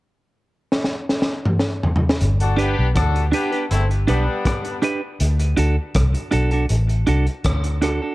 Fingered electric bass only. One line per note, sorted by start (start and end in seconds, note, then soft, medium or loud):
2.22 2.75 G1 medium
2.79 2.95 B1 medium
2.96 3.31 D2 medium
3.71 4.06 G1 medium
4.08 4.27 B1 medium
5.21 5.56 D2 loud
5.58 5.76 D2 medium
5.95 6.14 C2 loud
6.33 6.68 B1 medium
6.70 7.06 A1 medium
7.08 7.26 C2 medium
7.45 7.99 D2 medium